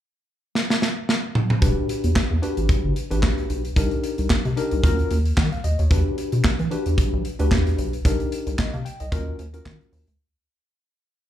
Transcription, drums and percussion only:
0.55 snare medium
0.70 snare medium
0.82 snare medium
1.09 snare medium
1.35 mid tom medium
1.50 mid tom medium
1.62 kick loud
1.62 closed hi-hat loud
1.89 closed hi-hat medium
2.04 closed hi-hat soft
2.16 kick loud
2.16 snare loud
2.16 clap medium
2.43 closed hi-hat medium
2.57 closed hi-hat medium
2.69 kick loud
2.69 closed hi-hat medium
2.96 closed hi-hat medium
3.11 closed hi-hat medium
3.23 kick loud
3.23 snare loud
3.23 clap medium
3.38 closed hi-hat soft
3.50 closed hi-hat medium
3.65 closed hi-hat medium
3.76 kick loud
3.76 closed hi-hat loud
3.91 closed hi-hat soft
4.04 closed hi-hat medium
4.18 closed hi-hat medium
4.30 kick loud
4.30 snare loud
4.30 clap medium
4.45 closed hi-hat soft
4.57 closed hi-hat medium
4.71 closed hi-hat medium
4.84 kick loud
4.84 closed hi-hat medium
4.99 closed hi-hat soft
5.11 closed hi-hat medium
5.25 closed hi-hat medium
5.37 kick loud
5.37 snare loud
5.37 clap medium
5.52 closed hi-hat soft
5.64 closed hi-hat medium
5.79 closed hi-hat soft
5.91 kick loud
5.91 closed hi-hat loud
6.18 closed hi-hat medium
6.32 closed hi-hat soft
6.44 kick loud
6.44 snare loud
6.44 clap medium
6.59 closed hi-hat soft
6.71 closed hi-hat medium
6.86 closed hi-hat medium
6.98 kick loud
6.98 closed hi-hat medium
7.25 closed hi-hat medium
7.39 closed hi-hat medium
7.51 kick loud
7.51 snare loud
7.51 clap medium
7.67 closed hi-hat soft
7.78 closed hi-hat medium
7.93 closed hi-hat soft
8.05 kick loud
8.05 closed hi-hat loud
8.20 closed hi-hat soft
8.32 closed hi-hat medium
8.47 closed hi-hat medium
8.59 kick loud
8.59 snare loud
8.59 clap medium
8.74 closed hi-hat soft
8.86 closed hi-hat medium
9.00 closed hi-hat medium
9.12 kick loud
9.12 closed hi-hat loud
9.39 closed hi-hat medium
9.54 closed hi-hat medium
9.66 kick loud
9.66 snare loud
9.66 clap medium
9.81 closed hi-hat soft
9.93 open hi-hat medium
10.07 closed hi-hat medium

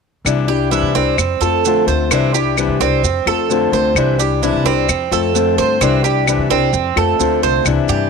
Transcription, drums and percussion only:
0.26 claves medium
0.26 maracas medium
0.73 maracas medium
0.95 maracas soft
1.18 claves medium
1.18 maracas medium
1.42 maracas soft
1.65 maracas medium
1.88 maracas soft
2.11 claves medium
2.11 maracas medium
2.35 maracas medium
2.58 claves medium
2.58 maracas medium
2.81 maracas soft
3.04 maracas medium
3.27 claves medium
3.50 maracas medium
3.74 maracas soft
3.96 claves medium
3.96 maracas medium
4.20 maracas medium
4.43 maracas medium
4.66 maracas soft
4.89 claves medium
4.89 maracas medium
5.13 maracas soft
5.35 maracas medium
5.59 maracas soft
5.81 claves medium
5.81 maracas medium
6.05 maracas medium
6.27 claves medium
6.27 maracas medium
6.51 maracas soft
6.74 maracas medium
6.97 claves medium
7.20 maracas medium
7.44 maracas soft
7.65 claves medium
7.65 maracas medium
7.89 maracas medium

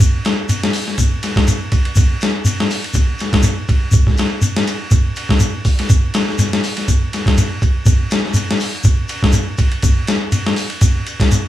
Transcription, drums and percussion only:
0.00 kick loud
0.00 shekere medium
0.25 snare medium
0.25 ride bell medium
0.25 shekere soft
0.49 ride bell medium
0.49 shekere medium
0.64 snare medium
0.73 open hi-hat medium
0.73 shekere soft
0.88 snare soft
0.98 kick medium
0.98 ride bell medium
0.98 shekere medium
1.23 snare soft
1.23 ride bell medium
1.23 shekere soft
1.36 kick medium
1.36 snare medium
1.48 ride bell medium
1.48 shekere medium
1.72 kick medium
1.72 ride bell medium
1.72 shekere soft
1.85 ride bell medium
1.96 kick loud
1.96 ride bell medium
1.96 shekere medium
2.21 snare medium
2.21 ride bell medium
2.21 shekere soft
2.45 ride bell medium
2.45 shekere medium
2.60 snare medium
2.70 open hi-hat medium
2.70 shekere soft
2.84 ride bell medium
2.94 kick medium
2.94 ride bell medium
2.94 shekere medium
3.18 snare soft
3.18 ride bell medium
3.18 shekere soft
3.33 kick medium
3.33 snare medium
3.33 ride bell medium
3.43 ride bell medium
3.43 shekere medium
3.68 kick medium
3.68 ride bell medium
3.68 shekere soft
3.92 kick loud
3.92 ride bell medium
3.92 shekere loud
4.07 kick medium
4.07 snare soft
4.17 snare medium
4.17 ride bell soft
4.17 shekere soft
4.42 ride bell soft
4.42 shekere medium
4.57 snare medium
4.67 ride bell medium
4.67 shekere soft
4.91 kick medium
4.91 ride bell medium
4.91 shekere medium
5.16 ride bell medium
5.16 shekere soft
5.29 kick medium
5.29 snare medium
5.40 ride bell medium
5.40 shekere medium
5.65 kick medium
5.65 open hi-hat medium
5.65 shekere soft
5.79 snare soft
5.79 ride bell medium
5.90 kick loud
5.90 ride bell medium
5.90 shekere medium
6.14 snare medium
6.14 ride bell medium
6.14 shekere soft
6.29 snare soft
6.39 snare soft
6.39 ride bell medium
6.39 shekere medium
6.53 snare medium
6.64 open hi-hat medium
6.64 shekere soft
6.77 snare soft
6.77 ride bell medium
6.88 kick medium
6.88 ride bell medium
6.88 shekere medium
7.13 snare soft
7.13 ride bell medium
7.13 shekere soft
7.26 kick medium
7.26 snare medium
7.26 ride bell medium
7.38 ride bell medium
7.38 shekere medium
7.62 kick medium
7.62 ride bell medium
7.62 shekere soft
7.86 kick loud
7.86 ride bell medium
7.86 shekere medium
8.10 snare medium
8.10 ride bell soft
8.10 shekere soft
8.26 snare soft
8.34 ride bell soft
8.34 shekere medium
8.51 snare medium
8.60 open hi-hat medium
8.60 shekere soft
8.84 kick medium
8.84 ride bell medium
8.84 shekere medium
9.08 ride bell medium
9.08 shekere soft
9.23 kick medium
9.23 snare medium
9.32 ride bell medium
9.32 shekere medium
9.58 kick medium
9.58 ride bell medium
9.58 shekere soft
9.72 ride bell medium
9.82 kick loud
9.82 ride bell medium
9.82 shekere medium
10.07 snare medium
10.07 ride bell medium
10.07 shekere soft
10.32 ride bell medium
10.32 shekere medium
10.47 snare medium
10.56 open hi-hat medium
10.56 shekere soft
10.70 ride bell medium
10.81 kick medium
10.81 ride bell medium
10.81 shekere medium
11.07 ride bell medium
11.07 shekere soft
11.20 kick medium
11.20 snare medium
11.20 ride bell medium
11.31 ride bell medium
11.31 shekere medium

